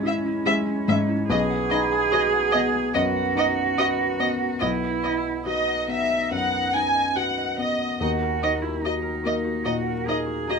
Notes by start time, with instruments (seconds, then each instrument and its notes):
Already playing: felt piano G#2 G#3 E4, harp C#4 E4 C#5, cello C#4
0.03 felt piano E4, harp G#4, violin section E5
0.26 harp E4
0.46 felt piano G#3, harp C#4, violin section E5
0.66 harp E4
0.88 felt piano G#2, harp G#4, violin section E5
1.09 harp E4
1.29 felt piano B1, cello G#4, harp B4, violin section D#5
1.50 harp F#5
1.71 felt piano D#4, violin section D#5, harp B5
1.92 harp D#6
2.12 felt piano F#4, harp B4, violin section D#5
2.33 harp F#5
2.52 felt piano B3, violin section D#5
2.93 felt piano F#2, cello F#4, harp B4, violin section D#5
3.16 harp F#5
3.35 felt piano D#4, violin section D#5, harp F#5
3.78 felt piano F#4, harp B4, violin section D#5
4.20 felt piano B3, violin section D#5, harp F#5
4.61 felt piano B1, cello E4, harp B4, violin section D#5
4.83 harp F#5
5.03 violin section D#5, felt piano D#5, harp B5
5.46 cello D#4, felt piano F#4, harp B4, violin section D#5
5.68 harp F#5
5.88 felt piano B3, violin section E5
6.10 harp D#5
6.31 felt piano F#2, harp B4, violin section F#5
6.52 harp F#5
6.73 felt piano D#4, harp F#5, violin section G#5
6.95 harp D#5
7.15 felt piano F#4, harp B4, violin section F#5
7.37 harp D#5
7.58 felt piano B3, violin section D#5, harp F#5
7.80 harp D#5
7.99 felt piano D#2, harp D#4, cello F#4, violin section D#5
8.22 harp A#4
8.41 felt piano D#4, harp D#5, violin section D#5
8.61 cello E4, harp F#4
8.81 harp D#4, cello D#4, felt piano F#4, violin section D#5
9.02 harp A#4
9.23 felt piano A#3, harp F#4, violin section D#5
9.44 harp F#4
9.64 felt piano A#2, harp D#4, cello F#4, violin section D#5
9.86 harp A#4
10.06 felt piano D#4, cello G#4, harp A#4, violin section D#5
10.26 harp F#4
10.47 harp D#4, felt piano F#4, violin section D#5